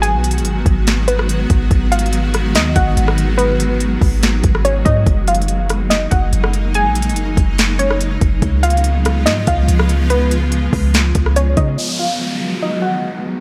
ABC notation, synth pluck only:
X:1
M:4/4
L:1/8
Q:1/4=143
K:G#dor
V:1 name="Synth pluck"
g4- g B z2 | z e3 d f z2 | B6 c d | z e3 d f z2 |
g4- g c z2 | z e3 d e z2 | B6 c d | z e3 d f z2 |]